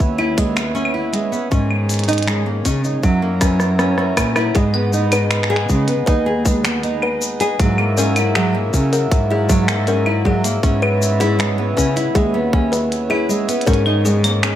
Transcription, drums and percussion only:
0.00 kick loud
0.00 cabasa soft
0.19 claves medium
0.38 kick loud
0.38 closed hi-hat medium
0.38 cabasa medium
0.57 finger snap medium
0.57 cabasa soft
0.76 cabasa soft
0.85 claves medium
1.14 closed hi-hat medium
1.33 cabasa soft
1.52 kick loud
1.52 cabasa soft
1.71 claves medium
1.89 closed hi-hat soft
1.89 cabasa medium
1.94 closed hi-hat soft
1.99 closed hi-hat medium
2.04 closed hi-hat medium
2.09 closed hi-hat medium
2.09 cabasa soft
2.13 closed hi-hat medium
2.18 closed hi-hat medium
2.23 closed hi-hat medium
2.28 finger snap medium
2.28 cabasa soft
2.65 kick medium
2.65 closed hi-hat medium
2.65 cabasa medium
2.84 cabasa soft
3.03 kick loud
3.03 cabasa soft
3.41 kick loud
3.41 cross-stick medium
3.41 closed hi-hat medium
3.41 cabasa medium
3.60 cross-stick medium
3.60 cabasa soft
3.79 cross-stick medium
3.79 cabasa soft
3.98 cross-stick medium
4.17 kick medium
4.17 cross-stick medium
4.17 closed hi-hat medium
4.17 cabasa medium
4.17 claves medium
4.36 cross-stick medium
4.36 cabasa soft
4.36 claves medium
4.55 kick loud
4.55 closed hi-hat soft
4.55 cabasa soft
4.74 claves medium
4.93 cabasa medium
5.12 closed hi-hat medium
5.12 cabasa soft
5.12 claves medium
5.31 finger snap medium
5.31 closed hi-hat soft
5.31 cabasa soft
5.43 finger snap medium
5.56 finger snap medium
5.69 kick medium
5.69 cabasa medium
5.88 closed hi-hat medium
5.88 cabasa soft
6.07 kick loud
6.07 closed hi-hat soft
6.07 cabasa soft
6.46 kick loud
6.46 cabasa medium
6.65 finger snap medium
6.65 closed hi-hat medium
6.65 cabasa soft
6.83 closed hi-hat soft
6.83 cabasa soft
7.02 claves medium
7.22 cabasa medium
7.40 closed hi-hat medium
7.40 cabasa soft
7.60 kick loud
7.60 closed hi-hat soft
7.60 cabasa soft
7.78 claves medium
7.97 cabasa medium
8.16 closed hi-hat medium
8.16 cabasa soft
8.16 claves medium
8.35 finger snap medium
8.35 closed hi-hat soft
8.35 cabasa soft
8.74 kick medium
8.74 cabasa medium
8.93 closed hi-hat medium
8.93 cabasa soft
9.12 kick loud
9.12 closed hi-hat soft
9.12 cabasa soft
9.49 kick loud
9.49 cabasa medium
9.68 finger snap medium
9.68 closed hi-hat medium
9.68 cabasa soft
9.87 closed hi-hat soft
9.87 cabasa soft
10.06 claves medium
10.25 kick medium
10.44 closed hi-hat medium
10.44 cabasa medium
10.63 kick loud
10.63 closed hi-hat soft
10.63 cabasa soft
10.83 claves medium
11.02 cabasa medium
11.21 closed hi-hat medium
11.21 cabasa soft
11.40 finger snap medium
11.40 closed hi-hat soft
11.40 cabasa soft
11.77 kick medium
11.77 cabasa medium
11.97 closed hi-hat medium
11.97 cabasa soft
12.15 kick loud
12.15 closed hi-hat soft
12.15 cabasa soft
12.53 kick loud
12.73 closed hi-hat medium
12.73 cabasa soft
12.92 closed hi-hat soft
12.92 cabasa soft
13.11 claves medium
13.30 cabasa medium
13.49 closed hi-hat medium
13.49 cabasa soft
13.61 closed hi-hat soft
13.67 kick loud
13.67 closed hi-hat soft
13.67 cabasa soft
13.73 closed hi-hat soft
13.86 claves medium
14.05 cabasa medium
14.24 closed hi-hat medium
14.24 cabasa soft
14.24 claves medium
14.43 finger snap medium
14.43 closed hi-hat soft
14.43 cabasa soft

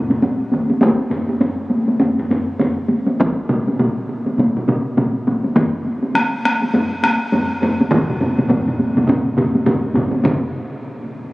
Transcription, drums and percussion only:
0.10 taiko low-mid medium
0.10 taiko mid medium
0.10 taiko high soft
0.22 taiko high medium
0.52 taiko medium
0.52 taiko high medium
0.70 taiko high medium
0.81 taiko loud
0.81 taiko high medium
1.10 taiko low-mid loud
1.10 taiko high medium
1.29 taiko high medium
1.41 taiko low-mid medium
1.41 taiko high medium
1.71 taiko high medium
1.88 taiko high medium
2.00 taiko low-mid medium
2.00 taiko high medium
2.19 taiko low-mid medium
2.31 taiko low-mid medium
2.31 taiko high medium
2.60 taiko low-mid medium
2.60 taiko high medium
2.88 taiko high medium
3.08 taiko high medium
3.20 taiko loud
3.20 taiko high medium
3.49 taiko mid loud
3.49 taiko high medium
3.67 taiko high medium
3.79 taiko mid loud
3.79 taiko high medium
4.09 taiko high medium
4.26 taiko high medium
4.38 taiko mid medium
4.38 taiko high medium
4.57 taiko mid medium
4.68 taiko mid loud
4.68 taiko high medium
4.98 taiko mid loud
4.98 taiko high medium
5.27 taiko medium
5.27 taiko high medium
5.44 taiko high medium
5.56 taiko loud
5.56 taiko low-mid loud
5.56 taiko high medium
5.85 taiko high soft
6.03 taiko high medium
6.15 taiko rim medium
6.15 taiko high medium
6.45 taiko rim medium
6.45 taiko high medium
6.62 taiko high medium
6.74 taiko low-mid loud
6.74 taiko high medium
7.03 taiko rim medium
7.03 taiko high medium
7.32 taiko low-mid loud
7.32 taiko high medium
7.62 taiko low-mid loud
7.62 taiko high medium
7.81 taiko high medium
7.91 taiko loud
7.91 taiko low-mid medium
7.91 taiko mid medium
7.91 taiko high medium
8.09 taiko low-mid medium
8.09 taiko mid medium
8.21 taiko low-mid medium
8.21 taiko mid medium
8.21 taiko high medium
8.38 taiko low-mid medium
8.38 taiko mid medium
8.38 taiko high medium
8.49 taiko medium
8.49 taiko low-mid medium
8.49 taiko mid medium
8.49 taiko high medium
8.67 taiko low-mid medium
8.67 taiko mid medium
8.80 taiko high medium
8.97 taiko low-mid medium
8.97 taiko mid medium
8.97 taiko high medium
9.07 taiko low-mid loud
9.07 taiko mid loud
9.07 taiko high medium
9.37 taiko low-mid loud
9.37 taiko mid loud
9.37 taiko high medium
9.55 taiko high medium
9.66 taiko low-mid loud
9.66 taiko mid loud
9.66 taiko high medium
9.94 taiko medium
9.94 taiko low-mid medium
9.94 taiko mid medium
9.94 taiko high medium
10.11 taiko high medium
10.24 taiko medium
10.24 taiko low-mid loud
10.24 taiko mid loud
10.24 taiko high medium

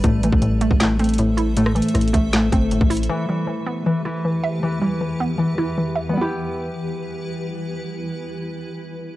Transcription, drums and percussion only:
0.04 kick loud
0.04 closed hi-hat medium
0.23 closed hi-hat medium
0.33 kick loud
0.42 closed hi-hat medium
0.61 closed hi-hat medium
0.71 kick medium
0.80 snare loud
0.80 clap medium
0.80 closed hi-hat medium
0.99 closed hi-hat soft
1.04 closed hi-hat medium
1.09 closed hi-hat medium
1.14 closed hi-hat medium
1.18 closed hi-hat medium
1.38 closed hi-hat medium
1.57 closed hi-hat medium
1.66 cross-stick loud
1.76 closed hi-hat medium
1.82 closed hi-hat medium
1.88 closed hi-hat medium
1.95 cross-stick medium
1.95 closed hi-hat medium
2.01 closed hi-hat medium
2.08 closed hi-hat medium
2.14 kick loud
2.14 closed hi-hat medium
2.33 snare loud
2.33 clap medium
2.33 closed hi-hat medium
2.52 kick loud
2.52 closed hi-hat medium
2.71 closed hi-hat medium
2.81 kick loud
2.90 closed hi-hat soft
2.90 open hi-hat medium
2.97 closed hi-hat medium
3.03 closed hi-hat medium

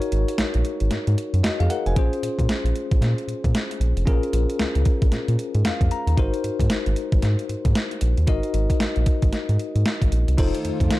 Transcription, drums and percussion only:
0.02 closed hi-hat soft
0.12 closed hi-hat medium
0.28 closed hi-hat medium
0.38 snare loud
0.38 closed hi-hat medium
0.54 closed hi-hat soft
0.65 closed hi-hat medium
0.80 closed hi-hat medium
0.91 snare medium
0.91 closed hi-hat medium
1.07 closed hi-hat soft
1.18 closed hi-hat medium
1.34 closed hi-hat soft
1.44 snare loud
1.44 closed hi-hat medium
1.60 closed hi-hat soft
1.70 closed hi-hat medium
1.86 closed hi-hat soft
1.96 kick loud
1.96 closed hi-hat medium
2.13 closed hi-hat soft
2.23 closed hi-hat medium
2.39 kick medium
2.39 closed hi-hat medium
2.49 snare loud
2.49 closed hi-hat medium
2.66 closed hi-hat soft
2.76 closed hi-hat medium
2.91 kick loud
2.91 closed hi-hat soft
3.02 snare medium
3.02 closed hi-hat medium
3.18 closed hi-hat soft
3.29 closed hi-hat medium
3.44 kick medium
3.44 closed hi-hat medium
3.55 snare loud
3.55 closed hi-hat medium
3.71 closed hi-hat soft
3.81 closed hi-hat medium
3.97 closed hi-hat soft
4.07 kick loud
4.07 closed hi-hat medium
4.23 closed hi-hat medium
4.33 closed hi-hat medium
4.50 closed hi-hat medium
4.59 snare loud
4.59 closed hi-hat medium
4.75 closed hi-hat soft
4.85 kick loud
4.85 closed hi-hat medium
5.02 kick loud
5.02 closed hi-hat soft
5.12 snare medium
5.12 closed hi-hat medium
5.28 closed hi-hat soft
5.39 closed hi-hat medium
5.55 closed hi-hat soft
5.65 snare loud
5.65 closed hi-hat medium
5.81 kick medium
5.81 closed hi-hat medium
5.91 closed hi-hat medium
6.07 closed hi-hat soft
6.17 kick loud
6.17 closed hi-hat medium
6.34 closed hi-hat medium
6.44 closed hi-hat medium
6.60 kick medium
6.60 closed hi-hat medium
6.70 snare loud
6.70 closed hi-hat medium
6.86 closed hi-hat soft
6.96 closed hi-hat medium
7.12 kick loud
7.12 closed hi-hat medium
7.22 snare medium
7.22 closed hi-hat medium
7.39 closed hi-hat soft
7.49 closed hi-hat medium
7.65 kick medium
7.65 closed hi-hat medium
7.75 snare loud
7.75 closed hi-hat medium
7.91 closed hi-hat soft
8.01 closed hi-hat medium
8.18 closed hi-hat soft
8.27 kick loud
8.27 closed hi-hat medium
8.43 closed hi-hat medium
8.54 closed hi-hat medium
8.70 kick medium
8.70 closed hi-hat medium
8.80 snare loud
8.80 closed hi-hat medium
8.96 closed hi-hat soft
9.06 kick medium
9.06 closed hi-hat medium
9.22 kick loud
9.22 closed hi-hat medium
9.33 snare medium
9.33 closed hi-hat medium
9.49 closed hi-hat soft
9.59 closed hi-hat medium
9.76 closed hi-hat soft
9.86 snare loud
9.86 closed hi-hat medium
10.02 kick medium
10.02 closed hi-hat soft
10.12 closed hi-hat medium
10.28 closed hi-hat soft
10.38 kick loud
10.38 closed hi-hat medium
10.38 crash medium
10.55 closed hi-hat medium
10.65 closed hi-hat medium
10.80 kick medium
10.80 closed hi-hat medium
10.91 snare loud
10.91 closed hi-hat medium

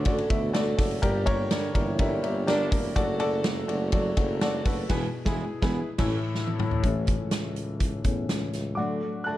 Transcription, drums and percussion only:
0.05 kick medium
0.05 ride medium
0.18 ride soft
0.30 kick medium
0.30 ride medium
0.54 snare loud
0.54 ride medium
0.78 kick loud
0.78 snare soft
0.78 open hi-hat medium
0.78 ride medium
0.91 ride soft
1.03 kick medium
1.03 hi-hat pedal medium
1.03 ride medium
1.26 kick loud
1.26 ride medium
1.51 snare loud
1.51 ride medium
1.75 kick medium
1.75 ride medium
1.99 kick medium
1.99 ride medium
2.24 ride medium
2.48 snare medium
2.48 ride medium
2.72 kick loud
2.72 open hi-hat medium
2.72 ride medium
2.96 kick medium
2.96 hi-hat pedal medium
2.96 ride medium
3.20 ride medium
3.44 snare loud
3.44 ride medium
3.69 ride medium
3.92 kick medium
3.92 ride medium
4.17 kick medium
4.17 ride medium
4.41 snare loud
4.41 ride medium
4.65 kick loud
4.65 snare soft
4.65 open hi-hat medium
4.65 ride medium
4.89 kick medium
4.89 snare medium
4.89 crash medium
5.26 kick medium
5.26 snare loud
5.62 kick loud
5.62 snare loud
5.98 kick loud
5.98 snare loud
5.98 crash medium
6.35 snare medium
6.47 high tom medium
6.59 mid tom loud
6.71 floor tom medium
6.83 kick loud
6.83 closed hi-hat medium
7.07 kick medium
7.07 closed hi-hat medium
7.31 snare loud
7.31 closed hi-hat medium
7.56 closed hi-hat medium
7.80 kick medium
7.80 closed hi-hat medium
8.04 kick medium
8.04 closed hi-hat medium
8.29 snare loud
8.29 closed hi-hat medium
8.53 snare soft
8.53 closed hi-hat medium

